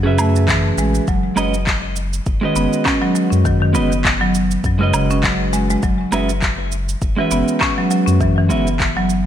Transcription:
Already playing: sub bass F#2
0.03 marimba C#3, clean electric guitar C#4 F#4 G#4 B4 E5
0.18 marimba A3, low woodblock, shaker
0.36 shaker
0.48 marimba E3, kick, clap, shaker
0.77 sub bass A1, marimba G#3, shaker
0.95 shaker
1.08 sub bass F#1, marimba F#3, kick, shaker
1.36 sub bass F#1, clean electric guitar G#3 C#4 F#4 B4 D#5, low woodblock, shaker
1.54 shaker
1.67 kick, clap, shaker
1.96 shaker
2.13 shaker
2.26 sub bass F#1, kick, shaker
2.41 marimba D#3, clean electric guitar G#3 C#4 F#4 B4 D#5
2.56 sub bass F#1, marimba B3, shaker
2.73 shaker
2.85 marimba C#4, kick, clap, low woodblock, shaker
3.02 marimba F#3
3.15 marimba F#3, shaker
3.32 sub bass F#2, shaker
3.45 marimba D#3, kick, shaker
3.62 marimba D#3
3.73 sub bass F#1, clean electric guitar G#3 C#4 F#4 B4 D#5, marimba B3, shaker
3.92 shaker
4.05 kick, clap, shaker
4.21 marimba F#3
4.35 shaker
4.51 shaker
4.64 sub bass F#2, kick, shaker
4.79 marimba C#3, clean electric guitar G#3 C#4 F#4 B4
4.83 clean electric guitar D#5
4.94 sub bass F#1, marimba C#3, low woodblock, shaker
5.11 marimba C#4, shaker
5.23 marimba F#3, kick, clap, shaker
5.53 marimba G#3, shaker
5.70 marimba G#3, shaker
5.83 sub bass F#1, marimba F#3, kick, shaker
6.12 sub bass F#1, clean electric guitar G#3 C#4 F#4 B4 E5, low woodblock, shaker
6.29 shaker
6.42 kick, clap, shaker
6.72 shaker
6.89 shaker
7.02 sub bass F#1, kick, shaker
7.16 marimba E3, clean electric guitar G#3 C#4 F#4 B4
7.21 clean electric guitar E5
7.31 sub bass F#1, marimba B3, shaker
7.48 shaker
7.61 marimba C#4, kick, clap, low woodblock, shaker
7.78 marimba F#3
7.91 marimba F#3, shaker
8.07 sub bass F#2, shaker
8.21 marimba E3, kick, shaker
8.38 marimba E3
8.49 sub bass F#1, clean electric guitar G#3 C#4 F#4 B4 E5, marimba B3, shaker
8.67 shaker
8.80 kick, clap, shaker
8.97 marimba F#3
9.10 shaker

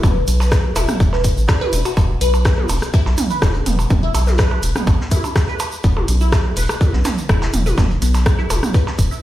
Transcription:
0.03 analog synth bass E1, synth pluck B4, kick, closed hi-hat, mid tom, percussion blips, shaker
0.28 analog synth bass B1, closed hi-hat, shaker
0.40 synth pluck B4, snare, percussion blips, shaker
0.51 kick, cross-stick, snare, closed hi-hat, shaker
0.75 analog synth bass E1, synth pluck E4, closed hi-hat, high tom, percussion blips, shaker
0.88 cross-stick, mid tom, shaker
1.00 analog synth bass E1, kick, closed hi-hat, shaker
1.13 synth pluck B4, snare, percussion blips
1.24 kick, closed hi-hat, shaker
1.37 analog synth bass A1, shaker
1.48 synth pluck D4, kick, cross-stick, snare, closed hi-hat, percussion blips, shaker
1.61 synth pluck B4, closed hi-hat, high tom
1.73 analog synth bass E1, synth pluck E4, closed hi-hat, shaker
1.85 synth pluck F#4, closed hi-hat, percussion blips, shaker
1.97 analog synth bass E1, kick, closed hi-hat, percussion blips, shaker
2.21 analog synth bass B1, synth pluck B4, closed hi-hat, shaker
2.34 percussion blips, shaker
2.44 kick, cross-stick, snare, closed hi-hat, shaker
2.58 synth pluck B3, high tom
2.69 analog synth bass E1, closed hi-hat, open hi-hat, percussion blips, shaker
2.82 cross-stick, closed hi-hat, shaker
2.94 synth pluck E4, kick, closed hi-hat, shaker
3.06 analog synth bass B1, snare, percussion blips
3.18 closed hi-hat, mid tom, shaker
3.30 synth pluck B4, closed hi-hat, shaker
3.42 analog synth bass E1, kick, cross-stick, snare, closed hi-hat, high tom, percussion blips, shaker
3.54 closed hi-hat
3.66 analog synth bass E1, synth pluck B3, closed hi-hat, mid tom, shaker
3.79 closed hi-hat, percussion blips, shaker
3.90 analog synth bass E1, kick, closed hi-hat, mid tom, shaker
4.03 synth pluck E4
4.14 analog synth bass B1, closed hi-hat, percussion blips, shaker
4.27 snare, high tom, shaker
4.38 synth pluck B4, kick, cross-stick, snare, closed hi-hat, shaker
4.51 percussion blips
4.63 analog synth bass E1, closed hi-hat, shaker
4.75 synth pluck B3, cross-stick, mid tom, shaker
4.87 analog synth bass A1, kick, closed hi-hat, percussion blips, shaker
5.00 snare
5.11 synth pluck E4, kick, closed hi-hat, high tom, shaker
5.24 percussion blips, shaker
5.36 kick, cross-stick, snare, closed hi-hat, shaker
5.48 synth pluck B4, closed hi-hat
5.60 closed hi-hat, percussion blips, shaker
5.72 shaker
5.83 analog synth bass E1, synth pluck B3, kick, closed hi-hat, shaker
5.97 high tom, percussion blips
6.08 analog synth bass B1, closed hi-hat, shaker
6.20 synth pluck E4, shaker
6.32 kick, cross-stick, snare, closed hi-hat, percussion blips, shaker
6.56 analog synth bass E1, synth pluck B4, closed hi-hat, open hi-hat, shaker
6.69 cross-stick, closed hi-hat, percussion blips, shaker
6.81 kick, closed hi-hat, high tom, shaker
6.93 analog synth bass B1, synth pluck B3, snare
7.04 snare, closed hi-hat, mid tom, percussion blips, shaker
7.18 closed hi-hat, shaker
7.29 analog synth bass E1, synth pluck E4, kick, cross-stick, closed hi-hat, shaker
7.42 snare, closed hi-hat, percussion blips
7.53 analog synth bass E1, closed hi-hat, mid tom, shaker
7.66 synth pluck B4, closed hi-hat, high tom, shaker
7.78 analog synth bass E1, kick, snare, closed hi-hat, mid tom, percussion blips, shaker
7.91 closed hi-hat
8.02 analog synth bass B1, synth pluck B3, closed hi-hat, shaker
8.14 snare, closed hi-hat, percussion blips, shaker
8.26 kick, cross-stick, closed hi-hat, shaker
8.39 synth pluck E4, closed hi-hat
8.50 analog synth bass E1, closed hi-hat, high tom, percussion blips, shaker
8.63 cross-stick, mid tom, shaker
8.74 synth pluck B4, kick, closed hi-hat, shaker
8.87 snare, percussion blips
8.99 analog synth bass E1, kick, closed hi-hat, shaker
9.11 synth pluck E4, shaker

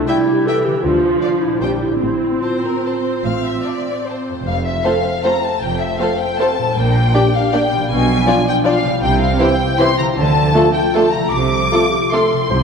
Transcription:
Already playing: harp C3 G3 G4 C5
0.08 viola section G3, clarinet E4, violin section E5 G5
0.47 viola section E3, clarinet A4, violin section E5 G5
0.65 harp D3, clarinet G4
0.70 harp F3
0.75 harp D4
0.80 harp A4
0.84 double bass section D2, cello section D3, viola section F3, clarinet F4
1.22 violin section D5 F5
1.41 harp A#2, clarinet E4
1.49 harp G3
1.53 harp C4
1.58 double bass section A#1, cello section A#2, clarinet D4, harp C5
1.63 viola section G3, violin section C5 G5
1.82 harp A2, clarinet E4
1.89 harp A3
1.93 harp C4
1.97 double bass section A1, cello section A2, viola section C4, clarinet E4, harp C5
2.41 clarinet F4, violin section C5 A5
2.64 violin section A#4
2.85 violin section C5 A5
3.24 double bass section A1, cello section A2, violin section F5
3.44 violin section E5
3.65 violin section D5 A5
4.06 violin section C5 A5
4.29 harp F2
4.33 harp A3
4.37 harp C4
4.42 double bass section F1, cello section F2, harp C5
4.47 violin section F5
4.65 violin section E5
4.84 viola section A3 F4, bassoon C4, french horn section C4 A4, clarinet A4, violin section A4 C5 F5
5.24 viola section A3 F4, french horn section C4 A4, bassoon C4, clarinet A4, violin section A4 C5 A#5
5.43 violin section A5
5.61 double bass section F1, cello section F2, violin section G5
5.79 violin section E5
5.99 viola section A3 F4, bassoon C4, french horn section C4 A4, clarinet A4, violin section A4 C5 F5
6.20 violin section G5
6.38 viola section A3 F4, bassoon C4, french horn section C4 A4, clarinet A4, violin section A4 C5 A5
6.58 harp A#2
6.63 harp G3
6.67 harp D4
6.72 double bass section A#1, harp A#4
6.76 cello section A#2, violin section G5
7.14 viola section A#3 D4, bassoon D4, french horn section D4 G4, clarinet G4, violin section G4 D5
7.34 violin section F5
7.52 viola section A#3 D4, french horn section D4 G4, bassoon D4, clarinet G4, violin section G4 D5 G5
7.72 harp B2
7.76 harp F3
7.81 harp D4
7.86 harp D5
7.90 double bass section B1, cello section B2, violin section G#5
8.26 viola section F3 D4, french horn section D4 F4, bassoon D4, clarinet F4, violin section F4 D5
8.48 violin section G5
8.64 viola section F3 D4, bassoon D4, french horn section D4 F4, clarinet F4, violin section F4 D5 F5
8.84 harp C3
8.89 harp G3
8.93 harp E4
8.98 double bass section C2, cello section C3, harp C5
9.03 violin section G5
9.21 violin section F5
9.39 viola section E3 E4, french horn section C4 E4, bassoon C4, clarinet E4, violin section G4 C5 G5
9.77 viola section E3 E4, bassoon C4, french horn section C4 E4, clarinet E4, violin section G4 C5 C6
9.98 harp D3, violin section A#5
10.02 harp F3
10.07 harp F4
10.11 harp A4
10.16 double bass section D2, cello section D3, violin section A5
10.53 french horn section A3 F4, bassoon A3, viola section A3 D4, clarinet F4, violin section F4 A4
10.74 violin section G5
10.93 french horn section A3 F4, bassoon A3, viola section A3 D4, clarinet F4, violin section F4 A4 A5
11.12 harp C3, violin section A#5
11.19 harp F3
11.23 harp F4
11.28 cello section C3, harp A4, violin section D6
11.32 double bass section C2
11.70 french horn section A3 F4, bassoon A3, viola section C4 F4, violin section F4 A4, clarinet A4
11.90 clarinet G4
12.11 bassoon A3, french horn section A3 F4, viola section C4 F4, violin section F4 A4 C6, clarinet A4
12.33 harp C3
12.38 harp G3
12.42 harp E4
12.46 harp C5
12.50 double bass section C2, cello section C3, timpani C3, clarinet C5

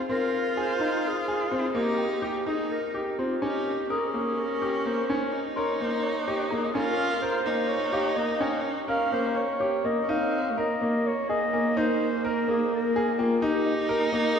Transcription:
0.09 grand piano C4, viola F4, clarinet A#4
0.57 grand piano G#4, clarinet C5
0.80 grand piano D#4, celesta A#5
1.07 clarinet G#4
1.28 grand piano G#4
1.52 grand piano C4
1.74 grand piano A#3, viola D#4, clarinet G4
1.98 celesta G5
2.22 grand piano G4
2.46 viola D#4, grand piano D#4, clarinet G#4
2.71 clarinet A#4
2.94 grand piano G4
3.18 grand piano C4, clarinet F4
3.41 grand piano C#4, viola D#4, clarinet G4
3.90 viola C#4, clarinet G#4, grand piano A#4, celesta D#6
3.98 clarinet A#4
4.07 clarinet G#4
4.14 grand piano A#3
4.39 clarinet A#4
4.62 grand piano G4
4.86 grand piano A#3, clarinet C5
5.10 grand piano C#4
5.31 viola D#4
5.56 grand piano A#4, clarinet C#5, celesta C6
5.81 grand piano A#3, clarinet C5
6.03 clarinet C#5
6.28 grand piano G4
6.51 grand piano A#3, clarinet G#4, celesta A#5
6.74 grand piano C#4, viola F4, clarinet A#4
7.21 grand piano A#4, clarinet C5
7.46 grand piano A#3, viola D#4
7.68 clarinet C#5
7.93 grand piano G4, celesta F5
8.10 celesta A#5
8.16 grand piano A#3, clarinet D#5
8.40 grand piano C#4, celesta G5
8.87 viola C#4, grand piano A#4, clarinet F5
9.12 grand piano A#3, clarinet C5
9.37 clarinet C#5
9.60 grand piano G4, celesta C#5
9.84 grand piano A#3, clarinet D#5
10.02 viola C#4
10.09 viola C4, grand piano D#4, clarinet F5
10.51 viola A3
10.57 viola A#3, grand piano A#4, clarinet D#5
10.81 grand piano A#3
11.06 clarinet C#5
11.29 grand piano G#4, clarinet D#5
11.53 grand piano A#3, celesta G#5
11.77 grand piano D#4, clarinet C5
12.25 grand piano A#4, clarinet A#4
12.48 grand piano A#3, clarinet G#4
12.74 clarinet A#4
12.96 grand piano G#4
13.19 grand piano A#3, clarinet F4, celesta G5
13.41 viola D#4, grand piano D#4, clarinet G4
13.66 celesta D#5
13.89 grand piano A#4
14.13 grand piano A#3
14.35 clarinet G#4

